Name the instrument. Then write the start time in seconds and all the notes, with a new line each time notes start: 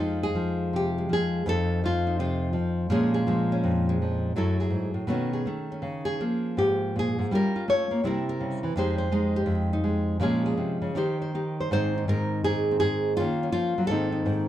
nylon-string guitar
Already playing: F2 F3
0.00 G#3 D#4 F4
0.23 G#4
0.35 F3
0.73 C3 G4
0.98 G#3
1.09 F3 G#4
1.46 F2 F3 A3 D#4 A4
1.84 F3 F4
2.07 D#4
2.19 C3 F4
2.53 F3
2.90 A#2 F3 G#3 C#4 G#4
3.14 G#4
3.27 F3 G#3
3.52 C#4
3.64 F2
3.89 G#3
4.02 F3
4.36 F#2 F#3 A3 E4 A4
4.60 G#4
4.70 G#2
4.94 A2
5.07 B2 D#3 A3 C#4 F#4
5.33 G#4
5.45 D#3 A3
5.72 C#4
5.82 C#3
6.05 G#4
6.20 F3 A#3
6.57 G#2 G4
6.96 A#2 G#4
7.19 G#2
7.31 G3 C#4 F4 A#4
7.56 F4
7.68 A3 C#5
7.91 A#3
8.04 C3 G3 C4 E4 A#4
8.29 A#4
8.40 C#3
8.63 E3
8.76 F2 G#3 D#4 G4 C5
8.98 C5
9.12 G#3 D#4
9.36 G4
9.46 F2
9.73 D#4
9.84 G#3
10.20 A#2 F3 G#3 C#4 G#4
10.46 G#4
10.57 C3
10.82 C#3
10.95 D#3 D#4 G4 C5
11.22 C5
11.35 D#4 G4
11.60 C5
11.71 G#2 D#3 C4 D#4 C5
11.98 D#4
12.08 G#2 A#4
12.44 G#2 G#4
12.71 C4
12.80 G#2 G#4
13.17 D#3 A#3 C#4 F4
13.43 C#4
13.52 F3 F4
13.78 F#3
13.87 G#2 D#3 A4
13.91 C4 D#4
14.12 D#4
14.26 G#2